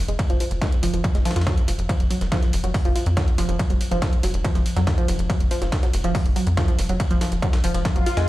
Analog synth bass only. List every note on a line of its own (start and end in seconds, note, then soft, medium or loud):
0.08 0.17 F1 medium
0.30 0.39 F1 medium
0.51 0.60 F1 medium
0.83 0.92 F1 medium
0.93 1.02 F1 medium
1.15 1.24 F1 medium
1.36 1.45 F2 medium
1.68 1.77 F1 medium
1.79 1.88 F1 medium
2.00 2.09 F1 medium
2.21 2.30 F1 medium
2.53 2.62 F1 medium
2.64 2.73 F1 medium
2.85 2.94 F1 medium
3.06 3.15 F2 medium
3.38 3.47 F1 medium
3.49 3.58 F1 medium
3.70 3.79 F1 medium
3.91 4.00 F1 medium
4.23 4.32 F1 medium
4.34 4.43 F1 medium
4.55 4.64 F1 medium
4.77 4.85 F2 medium
5.08 5.17 F1 medium
5.19 5.28 F1 medium
5.40 5.49 F1 medium
5.62 5.71 F1 medium
5.94 6.03 F1 loud
6.04 6.13 F1 medium
6.25 6.34 F1 medium
6.47 6.56 F2 medium
6.79 6.88 F1 loud
6.89 6.98 F1 medium
7.11 7.20 F1 medium
7.32 7.41 F1 medium
7.64 7.73 F1 medium
7.75 7.83 F1 medium
7.96 8.05 F1 medium
8.17 8.26 F2 medium